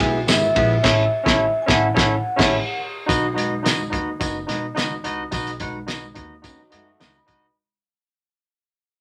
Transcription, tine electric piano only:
0.00 B3 E4 G#4 B4 E5
0.27 B3 E4 G#4 B4 E5
0.55 B3 E4 G#4 B4 E5
0.83 C#4 E4 A4 C#5 E5
1.24 C#4 E4 A4 C#5 E5
1.66 C#4 E4 A4 C#5 E5
1.94 C#4 E4 A4 C#5 E5
2.36 C#4 E4 A4 C#5 E5
3.06 D#4 F#4 B4 D#5
3.34 D#4 F#4 B4 D#5
3.63 D#4 F#4 B4 D#5
3.90 D#4 F#4 B4 D#5
4.20 D#4 F#4 B4 D#5
4.47 D#4 F#4 B4 D#5
4.75 D#4 F#4 B4 D#5
5.04 D#4 F#4 B4 D#5
5.31 D#4 F#4 B4 D#5
5.60 D#4 F#4 B4 F#5
5.87 D#4 F#4 B4 D#5
6.14 D#4 F#4 B4 D#5
6.42 D#4 F#4 B4 D#5
6.70 D#4 F#4 B4 D#5
7.00 D#4 F#4 B4 D#5
7.26 D#4 F#4 B4 D#5

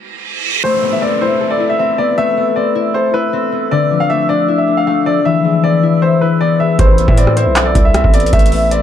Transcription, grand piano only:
0.64 C5
0.93 E5
1.02 D5
1.21 C5
1.50 D5
1.70 E5
1.79 E5
1.98 D5
2.18 E5
2.56 D5
2.94 C5
3.14 B4
3.71 D5
4.00 F5
4.10 E5
4.29 D5
4.58 E5
4.77 F5
4.87 F5
5.06 D5
5.25 E5
5.64 D5
6.02 C5
6.21 B4
6.41 D5
6.60 E5
6.79 C5
7.08 E5
7.18 D5
7.37 C5
7.66 D5
7.85 E5
7.95 E5
8.14 D5
8.33 E5
8.71 D5

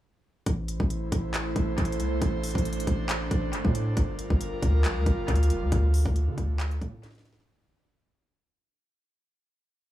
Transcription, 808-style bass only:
0.46 A1
0.80 A1
1.12 A1
1.56 A1
1.78 A1
2.00 C2
2.22 A1
2.55 A1
2.87 A1
3.31 A1
3.53 G1
3.65 A2
3.97 G1
4.30 G1
4.62 D2
4.84 A1
4.96 D2
5.06 G1
5.28 D2
5.50 F1
5.62 D2
5.72 D2
6.06 D2
6.27 D3
6.38 D2
6.81 A2

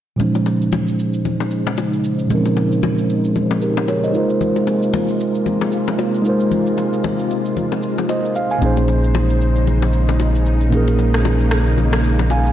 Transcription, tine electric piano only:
0.16 A#2 F3 G#3
0.21 C#4 D#4 C5
2.27 A#2 F3 G#3
2.31 C4 D#4 A#4
2.38 C#4
3.62 G4 A#4
3.88 A#4 C#5
4.04 C5 D#5
4.11 G#3 D#4 F4
4.17 A#4 C5
6.22 G#3 D#4 F4
6.27 A#4 C5
8.10 C5 D#5
8.36 F5
8.51 F5 G#5
8.58 A#2 A#3 C#4
8.63 D#4 G#4 C5
10.69 A#2 A#3 C#4
10.74 D#4 G#4 A#4
12.31 F5 G#5

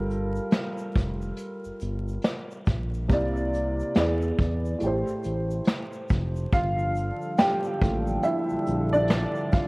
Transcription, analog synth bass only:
Already playing: G1
0.96 F1
1.65 G1
1.82 G1
2.67 A#1
3.10 C2
3.96 E2
4.39 E2
4.82 A1
5.08 A1
5.25 A1
6.11 F1
6.53 G1
7.82 A1
8.51 A#1
8.67 A#1

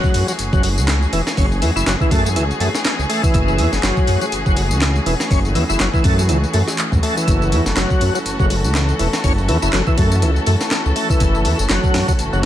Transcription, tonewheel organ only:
Already playing: F#3
0.28 F#3
0.53 F#3
0.64 F#3
1.13 E3
1.38 C#4
1.62 E3
1.76 E4
1.87 F#3
2.01 E3
2.12 A3
2.25 A3
2.36 E3
2.61 A3
3.09 A3
3.23 E3
3.83 F#3
4.21 F#3
4.46 F#3
4.57 F#3
5.06 E3
5.31 C#4
5.55 E3
5.69 E4
5.80 F#3
5.94 E3
6.04 A3
6.18 A3
6.29 E3
6.54 A3
7.03 A3
7.17 E3
7.77 F#3
8.15 F#3
8.40 F#3
8.50 F#3
8.99 E3
9.24 C#4
9.49 E3
9.62 E4
9.74 F#3
9.87 E3
9.98 A3
10.12 A3
10.22 E3
10.47 A3
10.96 A3
11.10 E3
11.70 F#3
12.08 F#3
12.33 F#3

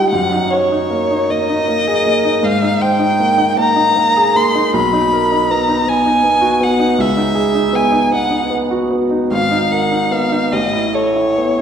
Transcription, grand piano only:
Already playing: G3 D#4 F4 C5
0.13 F#2
0.32 D#4
0.53 C#5
0.72 D#4
0.90 A#3
1.11 D#4
1.30 A#3
1.50 D#4
1.68 A#3
1.87 G#4
2.06 A#3
2.25 D#4
2.43 G#2
2.62 D#4
2.81 C5
2.99 D#4
3.20 A#3
3.38 D#4
3.57 A#3
3.76 D#4
3.96 A#3
4.17 G#4
4.36 A#3
4.55 D#4
4.74 B1
4.93 D#4
5.13 A#4
5.32 D#4
5.50 B3
5.69 D#4
5.88 B3
6.06 D#4
6.24 B3
6.41 F#4
6.60 B3
6.79 D#4
6.98 C#2
7.17 D#4
7.35 G#4
7.55 D#4
7.73 B3
7.92 D#4
8.11 B3
8.31 D#4
8.50 B3
8.71 F#4
8.91 B3
9.11 D#4
9.31 G#1
9.51 D#4
9.72 A#4
9.91 D#4
10.11 B3
10.32 D#4
10.52 A1
10.72 E4
10.94 A4
11.15 E4
11.38 B3

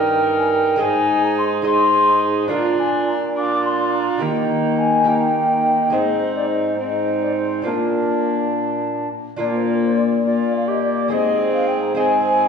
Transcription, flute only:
Already playing: G5
0.38 G#5
0.52 G5
0.81 G#5
1.24 A#5
1.38 C6
1.66 C6
2.51 A#5
2.80 G#5
3.08 A#5
3.37 D6
3.64 C6
3.93 A#5
4.78 G#5
5.07 G5
5.92 D#5
6.35 D5
6.49 D#5
6.78 D#5
7.22 D5
7.36 C5
7.66 A#4
9.39 D5
9.55 C5
9.67 A#4
9.83 C5
9.96 D5
10.25 D5
10.54 F5
10.68 D#5
10.82 D5
11.11 D#5
11.54 F5
11.67 G5
11.82 A#5
11.96 G#5

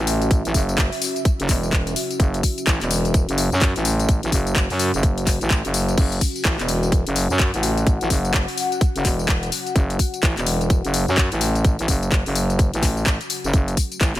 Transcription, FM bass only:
Already playing: A1
0.45 A1
0.54 F#1
1.40 F#1
1.49 E1
2.20 F#1
2.67 A1
2.81 E1
3.29 F#1
3.52 F#2
3.76 A1
4.23 A1
4.32 F#1
4.70 F#2
4.94 F#1
5.41 A1
5.65 F#1
5.98 F#1
6.45 A1
6.59 E1
7.07 F#1
7.30 F#2
7.54 A1
8.01 A1
8.10 F#1
8.95 F#1
9.05 E1
9.76 F#1
10.23 A1
10.37 E1
10.84 F#1
11.08 F#2
11.32 A1
11.79 A1
11.88 F#1
12.26 F#1
12.73 A1
13.44 F#1
13.53 F#1
14.01 A1
14.15 E1

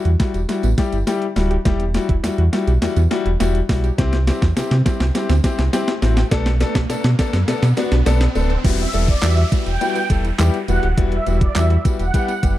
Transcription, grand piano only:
0.20 G3 E4 F#4
0.49 G3 E4 F#4
0.78 G3 E4 G4
1.07 G3 E4 G4
1.36 G3 E4 F#4
1.65 G3 E4 G4
1.94 G3 E4 F#4
2.23 G3 E4 F#4
2.52 G3 E4 F#4
2.82 G3 E4 F#4
3.11 G3 E4 F#4
3.40 G3 E4 F#4
3.69 G3 E4 F#4
3.98 C4 E4 G4
4.27 C4 E4 G4
4.56 C4 E4 G4
4.86 C4 E4 G4
5.15 C4 E4 G4
5.44 C4 E4 G4
5.73 C4 E4 G4
6.02 C4 E4 F#4
6.31 B3 D4 A4
6.60 B3 D4 A4
6.89 B3 D4 A4
7.19 B3 D4 A4
7.48 B3 D4 A4
7.77 B3 D4 F#4
8.06 B3 D4 A4
8.35 B3 D4 A4
8.64 G3 B3 E4 F#4
8.93 G3 B3 E4 A4
9.23 G3 B3 E4 F#4
9.52 G3 B3 E4 F#4
9.81 G3 B3 E4 F#4
10.10 G3 B3 E4 A4
10.39 G3 B3 E4 G4
10.68 G3 B3 E4 F#4
10.97 G3 B3 E4 F#4
11.26 G3 B3 E4 F#4
11.55 G3 B3 E4 F#4
11.85 G3 B3 E4 F#4
12.14 G3 B3 E4 G4
12.43 G3 B3 E4 G4

